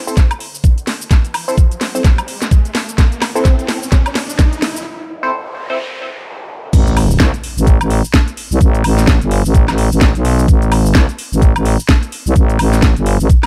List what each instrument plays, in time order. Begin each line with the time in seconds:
Already playing: riser
0.07 synth stab C4 E4 A4 C5, shaker
0.17 kick, snare, closed hi-hat, shaker
0.31 closed hi-hat, high woodblock, shaker
0.40 open hi-hat
0.55 shaker
0.64 kick, closed hi-hat, shaker
0.78 closed hi-hat, shaker
0.87 snare, open hi-hat
1.02 shaker
1.11 kick, snare, closed hi-hat, shaker
1.25 closed hi-hat, shaker
1.34 open hi-hat, high woodblock
1.48 synth stab C4 E4 A4 C5, shaker
1.58 kick, closed hi-hat, shaker
1.71 closed hi-hat, shaker
1.81 snare, open hi-hat
1.95 synth stab C4 E4 A4 C5, shaker
2.04 kick, snare, closed hi-hat, shaker
2.18 closed hi-hat, high woodblock, shaker
2.28 open hi-hat
2.42 snare, shaker
2.51 kick, closed hi-hat, shaker
2.65 closed hi-hat, shaker
2.75 snare, open hi-hat
2.89 closed hi-hat, shaker
2.98 kick, snare, closed hi-hat, shaker
3.12 closed hi-hat, shaker
3.22 snare, open hi-hat, high woodblock
3.35 synth stab C4 E4 A4 C5, shaker
3.45 kick, snare, closed hi-hat, shaker
3.59 closed hi-hat, shaker
3.69 snare, open hi-hat
3.83 shaker
3.92 kick, snare, closed hi-hat, shaker
4.06 closed hi-hat, high woodblock, shaker
4.15 snare, open hi-hat
4.30 shaker
4.39 kick, snare, closed hi-hat, shaker
4.53 closed hi-hat, shaker
4.62 snare, open hi-hat
4.77 shaker
4.86 noise sweep
5.23 synth stab C4 E4 A4 C5
5.70 synth stab C4 E4 A4 C5
6.73 fm bass A1, kick, closed hi-hat, crash, impact, shaker
6.87 closed hi-hat, shaker
6.97 open hi-hat, high woodblock
7.11 shaker
7.20 fm bass C2, kick, snare, closed hi-hat, shaker
7.34 closed hi-hat, shaker
7.44 open hi-hat
7.57 fm bass A1, shaker
7.67 kick, closed hi-hat, shaker
7.81 fm bass A1, closed hi-hat, high woodblock, shaker
7.90 open hi-hat
8.05 shaker
8.14 kick, snare, closed hi-hat, shaker
8.28 closed hi-hat, shaker
8.37 open hi-hat
8.51 fm bass C2, shaker
8.61 fm bass A1, kick, closed hi-hat, shaker
8.75 closed hi-hat, shaker
8.84 fm bass A1, open hi-hat, high woodblock
8.98 snare, shaker
9.07 kick, snare, closed hi-hat, shaker
9.21 fm bass G1, closed hi-hat, shaker
9.31 open hi-hat
9.45 fm bass A1, shaker
9.54 kick, closed hi-hat, shaker
9.68 fm bass A1, snare, closed hi-hat, high woodblock, shaker
9.78 open hi-hat
9.92 fm bass A1, shaker
10.01 kick, snare, closed hi-hat, shaker
10.15 fm bass B1, closed hi-hat, shaker
10.25 open hi-hat
10.39 shaker
10.48 fm bass A1, kick, closed hi-hat, shaker
10.62 closed hi-hat, shaker
10.72 open hi-hat, high woodblock
10.86 shaker
10.95 fm bass C2, kick, snare, closed hi-hat, shaker
11.09 closed hi-hat, shaker
11.19 open hi-hat
11.32 fm bass A1, shaker
11.42 kick, closed hi-hat, shaker
11.56 fm bass A1, closed hi-hat, high woodblock, shaker
11.65 open hi-hat
11.80 shaker
11.89 kick, snare, closed hi-hat, shaker
12.03 closed hi-hat, shaker
12.12 open hi-hat
12.26 fm bass C2, shaker
12.36 fm bass A1, kick, closed hi-hat, shaker
12.50 closed hi-hat, shaker
12.59 fm bass A1, open hi-hat, high woodblock
12.73 snare, shaker
12.82 kick, snare, closed hi-hat, shaker
12.96 fm bass G1, closed hi-hat, shaker
13.06 open hi-hat
13.20 fm bass A1, shaker
13.29 kick, closed hi-hat, shaker
13.43 snare, closed hi-hat, high woodblock